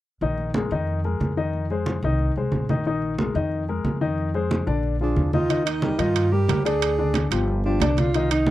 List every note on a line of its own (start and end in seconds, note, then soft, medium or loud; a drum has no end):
0.21 0.67 A#1 medium
0.21 0.49 D#3 medium
0.21 0.49 D#4 medium
0.21 0.49 D#5 medium
0.21 high conga soft
0.38 high conga soft
0.54 0.68 G#3 medium
0.54 0.69 G#4 medium
0.54 0.69 A#4 medium
0.54 high conga medium
0.71 1.17 F2 medium
0.71 0.99 D#3 medium
0.71 0.99 D#4 medium
0.71 0.99 D#5 medium
0.71 high conga soft
0.87 high conga soft
1.04 1.31 G#3 medium
1.04 1.31 G#4 medium
1.04 1.31 A#4 medium
1.04 high conga soft
1.20 1.97 F2 medium
1.20 high conga medium
1.37 1.64 D#3 medium
1.37 1.64 D#4 medium
1.37 1.64 D#5 medium
1.53 high conga soft
1.70 1.98 G#3 medium
1.70 1.97 G#4 medium
1.70 1.98 C5 medium
1.70 high conga soft
1.86 high conga medium
2.03 2.33 C2 medium
2.03 2.31 D#3 medium
2.03 2.31 D#4 medium
2.03 2.31 D#5 medium
2.03 high conga soft
2.19 high conga soft
2.36 2.51 C2 medium
2.36 2.64 G#3 medium
2.36 2.64 G#4 medium
2.36 2.64 C5 medium
2.36 high conga soft
2.52 3.29 A#1 medium
2.52 high conga medium
2.69 2.83 D#3 medium
2.69 2.83 D#4 medium
2.69 2.83 D#5 medium
2.69 high conga medium
2.85 3.13 D#3 medium
2.85 3.13 D#4 medium
2.85 3.13 D#5 medium
2.85 high conga soft
3.02 high conga soft
3.18 3.32 G#3 medium
3.18 3.33 G#4 medium
3.18 3.33 A#4 medium
3.18 high conga medium
3.34 3.81 F2 medium
3.34 3.62 D#3 medium
3.34 3.62 D#4 medium
3.34 3.63 D#5 medium
3.34 high conga soft
3.52 high conga soft
3.69 3.96 G#3 medium
3.69 3.95 G#4 medium
3.69 3.96 A#4 medium
3.69 high conga soft
3.84 4.61 F2 medium
3.84 high conga medium
4.01 4.28 D#3 medium
4.01 4.28 D#4 medium
4.01 4.28 D#5 medium
4.18 high conga soft
4.34 4.62 G#3 medium
4.34 4.61 G#4 medium
4.34 4.62 C5 medium
4.34 high conga soft
4.51 high conga medium
4.67 5.13 A#1 medium
4.67 4.94 D3 medium
4.67 4.94 D4 medium
4.67 4.94 D5 medium
4.67 high conga soft
4.83 high conga soft
5.00 5.28 F3 medium
5.00 5.32 D4 medium
5.00 5.28 F4 medium
5.00 5.28 G#4 medium
5.00 high conga soft
5.16 5.93 D#2 medium
5.16 high conga medium
5.33 5.47 D#3 medium
5.33 5.47 D#4 medium
5.33 5.64 F4 medium
5.33 5.47 D#5 medium
5.33 high conga medium
5.49 5.77 D#3 medium
5.49 5.77 D#4 medium
5.49 5.77 D#5 medium
5.49 high conga soft
5.49 high timbale medium
5.66 6.01 D#4 medium
5.66 high conga soft
5.66 high timbale medium
5.82 5.97 G3 medium
5.82 5.97 G4 medium
5.82 5.97 A#4 medium
5.82 high conga medium
5.82 low timbale medium
5.98 6.45 G2 medium
5.98 6.26 D#3 medium
5.98 6.26 D#4 medium
5.98 6.34 F4 medium
5.98 6.26 D#5 medium
5.98 high conga soft
5.98 high timbale medium
6.15 high conga soft
6.15 high timbale medium
6.32 6.46 G3 medium
6.32 6.46 G4 medium
6.32 6.64 G4 medium
6.32 6.46 A#4 medium
6.32 high conga soft
6.48 7.25 D2 medium
6.48 6.62 G3 medium
6.48 6.62 G4 medium
6.48 6.62 A#4 medium
6.48 high conga medium
6.48 high timbale medium
6.48 low timbale medium
6.65 6.92 D3 medium
6.65 6.92 D4 medium
6.65 7.27 G#4 medium
6.65 6.93 D5 medium
6.65 high timbale medium
6.81 high conga soft
6.81 high timbale medium
6.98 7.25 D3 medium
6.98 7.26 D4 medium
6.98 7.26 D5 medium
6.98 high conga soft
7.14 high conga medium
7.14 high timbale medium
7.14 low timbale medium
7.31 7.77 G1 medium
7.31 7.59 F3 medium
7.31 7.59 F4 medium
7.31 7.59 G4 medium
7.31 high conga soft
7.31 high timbale medium
7.48 high conga soft
7.64 7.78 F3 medium
7.64 8.00 D4 medium
7.64 7.79 F4 medium
7.64 7.79 G4 medium
7.64 high conga soft
7.80 8.51 C2 medium
7.80 8.08 D3 medium
7.80 8.08 D4 medium
7.80 8.08 D5 medium
7.80 high conga medium
7.80 high timbale medium
7.80 low timbale medium
7.97 8.31 F4 medium
7.97 high conga medium
7.97 high timbale medium
8.13 8.42 D#3 medium
8.13 8.42 D#4 medium
8.13 8.42 D#5 medium
8.13 high conga soft
8.13 high timbale medium
8.30 8.51 D#4 medium
8.30 high conga soft
8.30 high timbale medium
8.46 high conga medium
8.46 low timbale medium